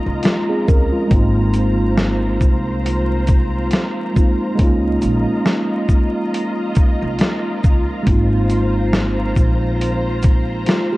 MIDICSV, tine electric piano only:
0, 0, Header, 1, 2, 480
1, 0, Start_track
1, 0, Key_signature, -4, "major"
1, 0, Tempo, 869565
1, 613, Time_signature, 4, 2, 24, 8
1, 6057, End_track
2, 0, Start_track
2, 0, Title_t, "Tine electric piano"
2, 0, Program_c, 0, 4
2, 0, Control_c, 0, 64, 127
2, 0, Note_on_c, 0, 56, 77
2, 0, Note_on_c, 0, 58, 68
2, 0, Note_on_c, 0, 61, 68
2, 0, Note_on_c, 0, 63, 68
2, 0, Note_on_c, 0, 65, 84
2, 99, Note_off_c, 0, 56, 0
2, 105, Note_off_c, 0, 58, 0
2, 110, Note_off_c, 0, 61, 0
2, 116, Note_off_c, 0, 63, 0
2, 121, Note_off_c, 0, 65, 0
2, 135, Note_on_c, 0, 65, 57
2, 137, Note_on_c, 0, 56, 49
2, 264, Note_off_c, 0, 65, 0
2, 266, Note_off_c, 0, 56, 0
2, 272, Note_on_c, 0, 68, 68
2, 275, Note_on_c, 0, 60, 57
2, 369, Note_off_c, 0, 68, 0
2, 370, Note_off_c, 0, 60, 0
2, 376, Note_on_c, 0, 70, 71
2, 378, Note_on_c, 0, 61, 61
2, 505, Note_off_c, 0, 70, 0
2, 506, Note_off_c, 0, 61, 0
2, 511, Note_on_c, 0, 65, 64
2, 515, Note_on_c, 0, 56, 51
2, 584, Note_off_c, 0, 56, 0
2, 591, Note_on_c, 0, 56, 75
2, 601, Note_on_c, 0, 58, 68
2, 613, Note_on_c, 0, 60, 70
2, 620, Control_c, 0, 64, 0
2, 625, Note_on_c, 0, 63, 69
2, 629, Note_off_c, 0, 65, 0
2, 636, Note_on_c, 0, 65, 81
2, 722, Control_c, 0, 64, 127
2, 2260, Note_off_c, 0, 56, 0
2, 2265, Note_off_c, 0, 58, 0
2, 2271, Note_off_c, 0, 60, 0
2, 2277, Note_off_c, 0, 63, 0
2, 2282, Note_off_c, 0, 65, 0
2, 2283, Note_on_c, 0, 56, 54
2, 2289, Note_on_c, 0, 58, 51
2, 2295, Note_on_c, 0, 60, 51
2, 2301, Note_on_c, 0, 63, 55
2, 2306, Note_on_c, 0, 65, 65
2, 2506, Note_off_c, 0, 56, 0
2, 2513, Note_on_c, 0, 56, 75
2, 2517, Note_off_c, 0, 58, 0
2, 2524, Note_on_c, 0, 58, 69
2, 2534, Note_off_c, 0, 60, 0
2, 2535, Note_on_c, 0, 61, 74
2, 2537, Note_off_c, 0, 63, 0
2, 2539, Note_off_c, 0, 65, 0
2, 2539, Control_c, 0, 64, 0
2, 2546, Note_on_c, 0, 63, 66
2, 2557, Note_on_c, 0, 65, 82
2, 2633, Control_c, 0, 64, 127
2, 4421, Note_off_c, 0, 56, 0
2, 4426, Note_off_c, 0, 58, 0
2, 4432, Note_off_c, 0, 61, 0
2, 4432, Note_on_c, 0, 56, 81
2, 4437, Note_off_c, 0, 63, 0
2, 4443, Note_off_c, 0, 65, 0
2, 4444, Note_on_c, 0, 58, 65
2, 4454, Note_on_c, 0, 60, 69
2, 4459, Control_c, 0, 64, 0
2, 4466, Note_on_c, 0, 63, 70
2, 4477, Note_on_c, 0, 65, 81
2, 4567, Control_c, 0, 64, 127
2, 5860, Note_off_c, 0, 56, 0
2, 5866, Note_off_c, 0, 58, 0
2, 5871, Note_off_c, 0, 60, 0
2, 5877, Note_off_c, 0, 63, 0
2, 5883, Note_off_c, 0, 65, 0
2, 5893, Note_on_c, 0, 65, 59
2, 5896, Note_on_c, 0, 56, 50
2, 6024, Note_off_c, 0, 65, 0
2, 6025, Note_off_c, 0, 56, 0
2, 6031, Note_on_c, 0, 67, 63
2, 6034, Note_on_c, 0, 58, 53
2, 6057, Note_off_c, 0, 58, 0
2, 6057, Note_off_c, 0, 67, 0
2, 6057, End_track
0, 0, End_of_file